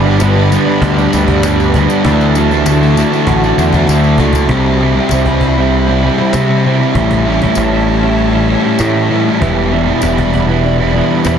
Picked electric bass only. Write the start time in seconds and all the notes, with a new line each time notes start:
Already playing: G1
0.82 D2
1.14 D2
2.05 D2
3.27 A1
3.58 E2
3.89 D2
4.20 C#2
4.49 C2
5.11 C2
6.34 C3
6.95 A1
7.57 A1
8.80 A2
9.42 E1
10.03 E1
11.25 E2